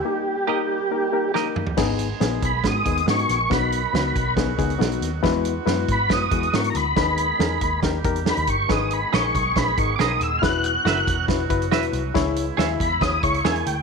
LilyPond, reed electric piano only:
\new Staff \with { instrumentName = "Reed electric piano" } { \time 4/4 \key gis \minor \tempo 4 = 139 <ais dis' g'>8 r8 <ais dis' ais'>8 r8 <ais dis' ais'>8 <ais dis' ais'>8 <ais dis' ais'>8 r8 | <b dis' gis'>8 r8 <b dis' gis'>8 r8 <b dis' fis'>8 <b dis' gis'>8 <b dis' fis'>8 r8 | <b dis' fis'>8 r8 <b dis' fis'>8 r8 <b dis' gis'>8 <b dis' gis'>8 <b dis' fis'>8 r8 | <gis b e' fis' b'>8 r8 <gis b e' fis' b'>8 r8 <gis b e' fis' b'>8 <gis b e' fis' gis'>8 <gis b e' fis' ais'>8 r8 |
<dis' gis' b'>8 r8 <dis' gis' ais'>8 r8 <dis' g' ais'>8 <dis' g' ais'>8 <dis' g' ais'>8 r8 | <dis' gis' b'>8 r8 <dis' gis' ais'>8 r8 <dis' gis' b'>8 <dis' gis' ais'>8 <dis' gis' ais'>8 r8 | <e' fis' b'>8 r8 <e' fis' ais'>8 r8 <e' fis' b'>8 <e' fis' b'>8 <e' fis' b'>8 r8 | <e' gis' cis''>8 r8 <e' gis' e''>8 r8 <e' gis' cis''>8 <e' gis' cis''>8 <e' gis' ais'>8 r8 | }